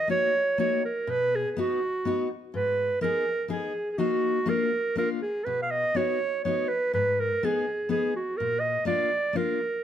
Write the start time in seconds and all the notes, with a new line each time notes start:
Already playing: D#5
0.08 A#3 D#4 F#4 C#5
0.58 A#3 D#4 F#4 C#5
0.85 A#4
1.07 B2 B4
1.35 G#4
1.51 G#4
1.57 B3 D#4 F#4
2.05 B3 D#4 F#4
2.54 G#2 B4
3.01 B3 D#4 G#4 A#4
3.48 B3 D#4 G#4
3.91 G#4
3.98 A#3 D#4 F#4
4.46 A#3 D4 F4 A#4
4.96 A#3 D4 F4 A#4
5.22 G#4
5.44 B2 B4
5.62 F5
5.71 D#5
5.95 B3 D#4 F#4 C#5
6.44 B3 D#4 F#4 C#5
6.68 B4
6.93 G#2 B4
7.20 A#4
7.43 B3 D#4 G#4
7.89 B3 D#4 G#4
8.16 F#4
8.37 A#2 A#4
8.60 D#5
8.85 A#3 D4 F4 D5
9.33 A#3 D4 F4 A#4